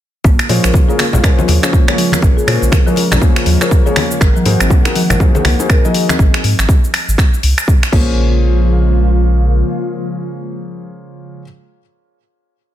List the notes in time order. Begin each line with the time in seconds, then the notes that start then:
0.24 A#1 C#3 F3 G#3 A#3 F4, kick, muted conga, shaker
0.39 finger snap, shaker
0.49 A#2 F3 A#3 C#4 F4 G#4 C5, open hi-hat
0.64 A#1 A#4, finger snap, muted conga, shaker
0.74 kick, high conga, shaker
0.89 A#3 C#4 F4 G#4 A#4, shaker
0.98 A#3, finger snap, open hi-hat, muted conga
1.13 A#1, low conga, shaker
1.23 A#3 C#4 F4 G#4 A#4 C5, finger snap, kick, low conga, shaker
1.38 F3, high conga, shaker
1.48 D#2, open hi-hat, muted conga, high conga
1.62 A#3 C#4 F4 G#4 C5, finger snap, shaker
1.72 A#3, kick, shaker
1.88 A#3 C#4 F4 G#4 C#5, finger snap, muted conga, shaker
1.97 F3, open hi-hat
2.12 A#4, finger snap, high conga, shaker
2.22 A#1 A#4, kick, muted conga, shaker
2.37 G#4, shaker
2.47 A#2 A#3 C#4 F4 G#4 C5, finger snap, open hi-hat
2.62 A#1, muted conga, shaker
2.72 A#4, finger snap, kick, high conga, shaker
2.87 F3 A#3 C#4 F4 G#4 A#4, shaker
2.96 open hi-hat, muted conga
3.11 A#1 C#4, finger snap, low conga, shaker
3.21 A#3 C#4 F4 G#4 C5, kick, high conga, shaker
3.36 finger snap, shaker
3.46 D#2 F3, open hi-hat, muted conga
3.61 A#3 C#4 F4 G#4 A#4 C5, finger snap, shaker
3.71 kick, shaker
3.86 A#3 C#4 F4 G#4 C#5, muted conga, high conga, shaker
3.96 A#3, finger snap, open hi-hat, high conga
4.11 shaker
4.20 G#1 D#3 A#4 F#5, finger snap, kick, muted conga, shaker
4.36 F3, shaker
4.46 G#2 A#3 D#4 F#4 G#4 C5, open hi-hat
4.60 G#1 C4, finger snap, muted conga, shaker
4.70 A#3, kick, high conga, shaker
4.85 A#3 D#4 F#4 G#4 A#4, finger snap, shaker
4.95 F3, open hi-hat, muted conga
5.10 G#1 A#4, finger snap, low conga, shaker
5.20 A#3 D#4 F#4 G#4 C5, kick, low conga, shaker
5.35 G#4, high conga, shaker
5.45 C2 A#3, finger snap, open hi-hat, muted conga, high conga
5.60 A#3 D#4 F#4 G#4 C5, shaker
5.70 A#4, finger snap, kick, shaker
5.85 F3 A#3 D#4 F#4 G#4 D#5, muted conga, shaker
5.94 open hi-hat
6.09 C4, finger snap, high conga, shaker
6.19 G#1, kick, shaker
6.34 finger snap, shaker
6.44 G#2, open hi-hat
6.59 G#1, finger snap, shaker
6.69 kick, shaker
6.84 shaker
6.94 finger snap, open hi-hat
7.08 G#1, shaker
7.18 finger snap, kick, shaker
7.34 shaker
7.43 C2, open hi-hat
7.58 finger snap, shaker
7.68 kick, shaker
7.83 finger snap, shaker
7.92 A#1 C#3 F3 G#3 A#3 C#4 F4 G#4 C5, kick, crash